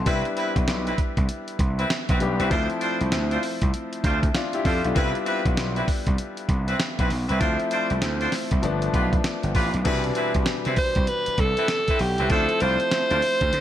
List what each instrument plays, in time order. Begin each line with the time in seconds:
0.05 slap bass C2, grand piano G3 B3 D4 E4, horn section C4 E4 B4, kick, closed hi-hat
0.25 closed hi-hat
0.37 horn section C4 E4 B4, closed hi-hat
0.56 slap bass B1, kick, closed hi-hat
0.68 slap bass B1, snare, closed hi-hat
0.86 horn section C4 E4 B4, closed hi-hat
0.98 kick, closed hi-hat
1.17 slap bass C2, kick, closed hi-hat
1.29 closed hi-hat
1.48 closed hi-hat
1.59 slap bass C2, kick, closed hi-hat
1.78 horn section C4 E4 B4, closed hi-hat
1.90 snare, closed hi-hat
2.09 slap bass B1, horn section C4 E4 B4, kick, closed hi-hat
2.20 slap bass B1, grand piano G3 B3 D4 G4, closed hi-hat
2.39 slap bass C2, horn section C4 E4 B4, closed hi-hat
2.50 slap bass D2, grand piano F3 A3 C4 E4, horn section D4 F4 C5, kick, closed hi-hat
2.70 closed hi-hat
2.81 horn section D4 F4 C5, closed hi-hat
3.01 slap bass C2, closed hi-hat
3.12 slap bass D2, snare, closed hi-hat
3.31 horn section D4 F4 C5, closed hi-hat
3.43 open hi-hat
3.62 slap bass C2, kick, closed hi-hat
3.74 closed hi-hat
3.93 closed hi-hat
4.03 slap bass D2, horn section D4 F4 C5, kick, closed hi-hat
4.23 kick, closed hi-hat
4.35 grand piano D4 F4, snare, closed hi-hat
4.53 grand piano E4 G4, closed hi-hat
4.65 slap bass F2, horn section D4 F4 C5, grand piano F4 A4, kick, open hi-hat
4.85 slap bass B1, grand piano D4 F4, closed hi-hat
4.95 slap bass C2, grand piano G3 B3 D4 E4, horn section C4 E4 B4, kick, closed hi-hat
5.15 closed hi-hat
5.26 horn section C4 E4 B4, closed hi-hat
5.46 slap bass B1, kick, closed hi-hat
5.57 slap bass B1, snare, closed hi-hat
5.76 horn section C4 E4 B4, closed hi-hat
5.88 kick, open hi-hat
6.07 slap bass C2, kick, closed hi-hat
6.18 closed hi-hat
6.37 closed hi-hat
6.49 slap bass C2, kick, closed hi-hat
6.67 horn section C4 E4 B4, closed hi-hat
6.80 snare, closed hi-hat
6.98 slap bass B1, horn section C4 E4 B4, kick, closed hi-hat
7.10 slap bass B1, open hi-hat
7.29 slap bass C2, horn section C4 E4 B4, closed hi-hat
7.40 slap bass D2, grand piano F3 A3 C4 E4, horn section D4 F4 C5, kick, closed hi-hat
7.60 closed hi-hat
7.71 horn section D4 F4 C5, closed hi-hat
7.90 slap bass C2, closed hi-hat
8.02 slap bass D2, snare, closed hi-hat
8.21 horn section D4 F4 C5, closed hi-hat
8.32 snare, open hi-hat
8.51 slap bass C2, kick, closed hi-hat
8.62 slap bass G1, grand piano F3 A3 B3 D4, closed hi-hat
8.82 closed hi-hat
8.93 slap bass B1, horn section F4 G4 B4, kick, closed hi-hat
9.13 kick, closed hi-hat
9.24 snare, closed hi-hat
9.43 slap bass G1, closed hi-hat
9.54 slap bass A1, horn section F4 G4 B4, kick, open hi-hat
9.74 slap bass B1, closed hi-hat
9.84 slap bass C2, grand piano B2 E3 G3 D4, horn section C4 E4 B4, kick, closed hi-hat, crash
10.04 closed hi-hat
10.15 horn section C4 E4 B4, closed hi-hat
10.34 slap bass C2, kick, closed hi-hat
10.46 snare, closed hi-hat
10.65 slap bass C3, horn section C4 E4 B4, closed hi-hat
10.76 alto saxophone C5, kick, open hi-hat
10.95 slap bass C2, kick, closed hi-hat
11.07 alto saxophone B4, closed hi-hat
11.26 muted slap bass stroke, closed hi-hat
11.38 slap bass C2, alto saxophone A4, kick, closed hi-hat
11.57 horn section C4 E4 B4, closed hi-hat
11.68 snare, closed hi-hat
11.88 horn section C4 E4 B4, kick, closed hi-hat
11.99 slap bass B1, alto saxophone G4, open hi-hat
12.18 slap bass C2, horn section C4 E4 B4, closed hi-hat
12.29 slap bass D2, grand piano F3 A3 C4 E4, horn section D4 F4 C5, alto saxophone A4, kick, closed hi-hat
12.49 closed hi-hat
12.60 slap bass C2, horn section D4 F4 C5, alto saxophone C5, closed hi-hat
12.80 closed hi-hat
12.91 snare, closed hi-hat
13.10 slap bass D2, horn section D4 F4 C5, closed hi-hat
13.22 open hi-hat
13.41 slap bass D2, kick, closed hi-hat
13.53 slap bass D3, closed hi-hat